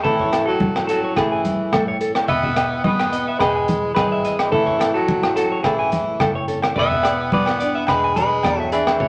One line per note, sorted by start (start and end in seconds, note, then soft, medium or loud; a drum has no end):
0.04 1.12 A1 medium
0.04 2.29 A2 medium
0.04 0.44 E3 medium
0.04 1.45 E3 medium
0.04 0.33 A3 medium
0.04 0.89 C#4 medium
0.04 0.45 E4 medium
0.04 0.44 A4 medium
0.04 0.15 A4 medium
0.04 kick medium
0.04 muted conga soft
0.08 0.62 E4 medium
0.20 0.29 C#5 medium
0.20 kick medium
0.33 1.17 A3 medium
0.33 0.43 A4 medium
0.33 cross-stick medium
0.33 closed hi-hat soft
0.33 low agogo medium
0.46 0.86 F#3 medium
0.46 0.85 F#4 medium
0.46 0.85 A4 medium
0.60 2.30 E4 medium
0.60 kick medium
0.60 muted conga soft
0.60 high conga medium
0.76 cross-stick medium
0.76 low agogo medium
0.87 1.15 F#3 medium
0.87 2.26 C#4 medium
0.87 1.15 F#4 medium
0.87 1.17 A4 medium
0.87 0.99 A4 medium
0.87 closed hi-hat soft
1.04 1.13 C#5 medium
1.16 1.69 A1 medium
1.16 1.97 E3 medium
1.16 2.26 A3 medium
1.16 1.97 E4 medium
1.16 1.97 G#4 medium
1.16 1.27 A4 medium
1.16 kick medium
1.16 cross-stick medium
1.16 muted conga soft
1.16 low agogo medium
1.32 1.41 G#5 medium
1.45 3.67 E3 medium
1.45 closed hi-hat soft
1.45 muted conga soft
1.45 high conga medium
1.73 2.01 G#2 medium
1.73 2.25 A2 medium
1.73 1.83 A4 medium
1.73 kick medium
1.73 cross-stick medium
1.73 high conga medium
1.73 low agogo medium
1.88 1.97 C#5 medium
2.01 2.29 F#2 medium
2.01 2.11 A4 medium
2.01 closed hi-hat soft
2.15 cross-stick medium
2.15 low agogo medium
2.28 3.36 E1 medium
2.28 2.81 B3 medium
2.28 2.84 G#4 medium
2.28 2.81 B4 medium
2.28 2.39 D#5 medium
2.28 2.84 E5 loud
2.28 muted nylon-string guitar stroke medium
2.28 kick medium
2.28 muted conga soft
2.43 2.53 E5 medium
2.43 kick medium
2.56 3.41 G#3 medium
2.56 2.67 D#5 medium
2.56 cross-stick medium
2.56 closed hi-hat soft
2.56 low agogo medium
2.84 3.36 B3 medium
2.84 4.52 G#4 medium
2.84 3.37 B4 medium
2.84 3.39 D#5 medium
2.84 kick medium
2.84 muted conga soft
2.84 high conga medium
2.99 cross-stick medium
2.99 low agogo medium
3.12 4.52 B3 medium
3.12 3.23 D#5 medium
3.12 closed hi-hat soft
3.28 3.37 E5 medium
3.39 3.93 E1 medium
3.39 3.92 G#3 medium
3.39 4.55 G#3 medium
3.39 3.93 G#4 medium
3.39 3.93 B4 medium
3.39 3.51 D#5 medium
3.39 kick medium
3.39 cross-stick medium
3.39 muted conga soft
3.39 low agogo medium
3.56 3.64 G#5 medium
3.67 5.92 E3 medium
3.67 closed hi-hat soft
3.67 muted conga soft
3.67 high conga medium
3.95 4.49 G#1 medium
3.95 4.23 F#2 medium
3.95 4.47 G#3 medium
3.95 4.49 G#4 medium
3.95 4.53 B4 medium
3.95 4.06 D#5 medium
3.95 kick medium
3.95 cross-stick medium
3.95 high conga medium
3.95 low agogo medium
4.12 4.21 E5 medium
4.24 4.52 G#2 medium
4.24 4.35 D#5 medium
4.24 closed hi-hat soft
4.39 cross-stick medium
4.39 low agogo medium
4.51 5.60 A1 medium
4.51 6.76 A2 medium
4.51 4.92 E3 medium
4.51 5.08 E4 medium
4.51 4.93 E4 medium
4.51 4.62 A4 medium
4.51 4.93 A4 medium
4.51 kick medium
4.51 muted conga soft
4.66 4.75 C#5 medium
4.66 kick medium
4.79 4.89 A4 medium
4.79 cross-stick medium
4.79 closed hi-hat soft
4.79 low agogo medium
4.94 5.33 F#3 medium
4.94 5.34 F#4 medium
4.94 5.35 A4 medium
5.08 6.77 E4 medium
5.08 kick medium
5.08 muted conga soft
5.08 high conga medium
5.23 cross-stick medium
5.23 low agogo medium
5.35 5.62 F#3 medium
5.35 6.47 C#4 medium
5.35 5.63 F#4 medium
5.35 5.46 A4 medium
5.35 5.62 A4 medium
5.35 closed hi-hat soft
5.52 5.60 C#5 medium
5.63 6.17 A1 medium
5.63 6.44 E3 medium
5.63 6.19 A3 medium
5.63 6.44 E4 soft
5.63 6.43 G#4 medium
5.63 5.75 A4 medium
5.63 kick medium
5.63 cross-stick medium
5.63 muted conga soft
5.63 low agogo medium
5.79 5.88 G#5 medium
5.92 7.64 E3 medium
5.92 closed hi-hat soft
5.92 muted conga soft
5.92 high conga medium
6.20 6.72 F#1 medium
6.20 6.73 A3 medium
6.20 6.30 A4 medium
6.20 kick medium
6.20 cross-stick medium
6.20 high conga medium
6.20 low agogo medium
6.35 6.44 C#5 medium
6.48 6.73 C#4 medium
6.48 6.58 A4 medium
6.48 closed hi-hat soft
6.62 cross-stick medium
6.62 low agogo medium
6.76 7.84 E1 medium
6.76 9.00 E2 medium
6.76 7.29 B3 medium
6.76 7.33 G#4 medium
6.76 7.29 B4 medium
6.76 6.86 D5 medium
6.76 7.30 E5 medium
6.76 kick medium
6.76 muted conga soft
6.91 7.00 E5 medium
6.91 kick medium
7.03 7.88 G#3 medium
7.03 7.14 D5 medium
7.03 cross-stick medium
7.03 closed hi-hat soft
7.03 low agogo medium
7.32 7.85 B3 medium
7.32 9.04 G#4 medium
7.32 7.85 B4 medium
7.32 7.88 D5 medium
7.32 kick medium
7.32 muted conga soft
7.32 high conga medium
7.46 cross-stick medium
7.46 low agogo medium
7.60 8.71 D4 medium
7.60 7.70 D5 medium
7.60 closed hi-hat soft
7.75 7.84 E5 medium
7.87 8.41 E1 medium
7.87 8.44 G#3 medium
7.87 8.15 G#3 medium
7.87 8.14 G#4 medium
7.87 8.14 B4 medium
7.87 muted clean electric guitar stroke medium
7.87 kick medium
7.87 cross-stick medium
7.87 muted conga soft
7.87 low agogo medium
8.04 8.13 G#5 medium
8.16 8.58 G#3 medium
8.16 8.68 G#4 medium
8.16 8.68 B4 medium
8.16 closed hi-hat soft
8.16 high conga medium
8.43 8.97 E2 medium
8.43 8.55 D5 medium
8.43 kick medium
8.43 cross-stick medium
8.43 high conga medium
8.43 low agogo medium
8.58 8.69 F#3 medium
8.58 8.69 E5 medium
8.72 9.08 E3 medium
8.72 8.97 D4 medium
8.72 9.08 E4 medium
8.72 9.08 G#4 medium
8.72 8.83 D5 medium
8.72 closed hi-hat soft
8.87 cross-stick medium
8.87 low agogo medium
9.00 9.08 A1 loud
9.00 9.08 A2 medium
9.00 9.08 C#4 medium
9.00 9.08 C#5 medium
9.00 kick medium
9.00 muted conga soft